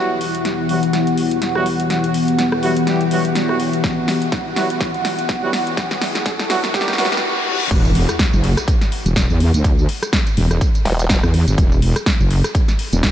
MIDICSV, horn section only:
0, 0, Header, 1, 2, 480
1, 0, Start_track
1, 0, Key_signature, 1, "minor"
1, 0, Tempo, 483871
1, 1888, Time_signature, 4, 2, 24, 8
1, 13010, End_track
2, 0, Start_track
2, 0, Title_t, "Horn section"
2, 0, Program_c, 0, 61
2, 0, Note_on_c, 0, 54, 100
2, 0, Note_on_c, 0, 55, 98
2, 0, Note_on_c, 0, 59, 89
2, 0, Note_on_c, 0, 64, 87
2, 0, Note_on_c, 0, 66, 108
2, 207, Note_off_c, 0, 54, 0
2, 207, Note_off_c, 0, 55, 0
2, 207, Note_off_c, 0, 59, 0
2, 207, Note_off_c, 0, 64, 0
2, 207, Note_off_c, 0, 66, 0
2, 687, Note_on_c, 0, 54, 75
2, 687, Note_on_c, 0, 55, 74
2, 687, Note_on_c, 0, 59, 68
2, 687, Note_on_c, 0, 64, 66
2, 687, Note_on_c, 0, 66, 81
2, 808, Note_off_c, 0, 54, 0
2, 808, Note_off_c, 0, 66, 0
2, 809, Note_off_c, 0, 55, 0
2, 809, Note_off_c, 0, 59, 0
2, 809, Note_off_c, 0, 64, 0
2, 1543, Note_on_c, 0, 54, 84
2, 1543, Note_on_c, 0, 55, 83
2, 1543, Note_on_c, 0, 59, 75
2, 1543, Note_on_c, 0, 64, 77
2, 1543, Note_on_c, 0, 66, 91
2, 1635, Note_off_c, 0, 54, 0
2, 1635, Note_off_c, 0, 55, 0
2, 1635, Note_off_c, 0, 66, 0
2, 1636, Note_off_c, 0, 59, 0
2, 1636, Note_off_c, 0, 64, 0
2, 2606, Note_on_c, 0, 54, 93
2, 2606, Note_on_c, 0, 55, 91
2, 2606, Note_on_c, 0, 59, 85
2, 2606, Note_on_c, 0, 64, 87
2, 2606, Note_on_c, 0, 66, 101
2, 2728, Note_off_c, 0, 54, 0
2, 2728, Note_off_c, 0, 55, 0
2, 2728, Note_off_c, 0, 59, 0
2, 2728, Note_off_c, 0, 64, 0
2, 2728, Note_off_c, 0, 66, 0
2, 2846, Note_on_c, 0, 55, 81
2, 2846, Note_on_c, 0, 59, 73
2, 2846, Note_on_c, 0, 67, 90
2, 2847, Note_on_c, 0, 64, 75
2, 3027, Note_off_c, 0, 55, 0
2, 3027, Note_off_c, 0, 59, 0
2, 3027, Note_off_c, 0, 64, 0
2, 3027, Note_off_c, 0, 67, 0
2, 3087, Note_on_c, 0, 54, 89
2, 3087, Note_on_c, 0, 55, 89
2, 3087, Note_on_c, 0, 59, 80
2, 3087, Note_on_c, 0, 64, 78
2, 3087, Note_on_c, 0, 66, 96
2, 3209, Note_off_c, 0, 54, 0
2, 3209, Note_off_c, 0, 55, 0
2, 3209, Note_off_c, 0, 59, 0
2, 3209, Note_off_c, 0, 64, 0
2, 3209, Note_off_c, 0, 66, 0
2, 3463, Note_on_c, 0, 59, 70
2, 3463, Note_on_c, 0, 64, 68
2, 3464, Note_on_c, 0, 54, 76
2, 3464, Note_on_c, 0, 55, 76
2, 3464, Note_on_c, 0, 66, 83
2, 3556, Note_off_c, 0, 54, 0
2, 3556, Note_off_c, 0, 55, 0
2, 3556, Note_off_c, 0, 59, 0
2, 3556, Note_off_c, 0, 64, 0
2, 3556, Note_off_c, 0, 66, 0
2, 4527, Note_on_c, 0, 54, 79
2, 4527, Note_on_c, 0, 55, 76
2, 4527, Note_on_c, 0, 59, 70
2, 4527, Note_on_c, 0, 64, 70
2, 4527, Note_on_c, 0, 66, 85
2, 4649, Note_off_c, 0, 54, 0
2, 4649, Note_off_c, 0, 55, 0
2, 4649, Note_off_c, 0, 59, 0
2, 4649, Note_off_c, 0, 64, 0
2, 4649, Note_off_c, 0, 66, 0
2, 5383, Note_on_c, 0, 54, 89
2, 5383, Note_on_c, 0, 55, 87
2, 5383, Note_on_c, 0, 59, 82
2, 5383, Note_on_c, 0, 64, 78
2, 5383, Note_on_c, 0, 66, 97
2, 5476, Note_off_c, 0, 54, 0
2, 5476, Note_off_c, 0, 55, 0
2, 5476, Note_off_c, 0, 59, 0
2, 5476, Note_off_c, 0, 64, 0
2, 5476, Note_off_c, 0, 66, 0
2, 6446, Note_on_c, 0, 54, 97
2, 6446, Note_on_c, 0, 59, 88
2, 6446, Note_on_c, 0, 64, 87
2, 6446, Note_on_c, 0, 66, 105
2, 6447, Note_on_c, 0, 55, 96
2, 6568, Note_off_c, 0, 54, 0
2, 6568, Note_off_c, 0, 55, 0
2, 6568, Note_off_c, 0, 59, 0
2, 6568, Note_off_c, 0, 64, 0
2, 6568, Note_off_c, 0, 66, 0
2, 6687, Note_on_c, 0, 55, 84
2, 6687, Note_on_c, 0, 59, 78
2, 6687, Note_on_c, 0, 64, 77
2, 6687, Note_on_c, 0, 67, 94
2, 6867, Note_off_c, 0, 64, 0
2, 6867, Note_off_c, 0, 67, 0
2, 6868, Note_off_c, 0, 55, 0
2, 6868, Note_off_c, 0, 59, 0
2, 6927, Note_on_c, 0, 54, 81
2, 6927, Note_on_c, 0, 66, 88
2, 6928, Note_on_c, 0, 55, 79
2, 6928, Note_on_c, 0, 59, 74
2, 6928, Note_on_c, 0, 64, 72
2, 7049, Note_off_c, 0, 54, 0
2, 7049, Note_off_c, 0, 55, 0
2, 7049, Note_off_c, 0, 59, 0
2, 7049, Note_off_c, 0, 64, 0
2, 7049, Note_off_c, 0, 66, 0
2, 13010, End_track
0, 0, End_of_file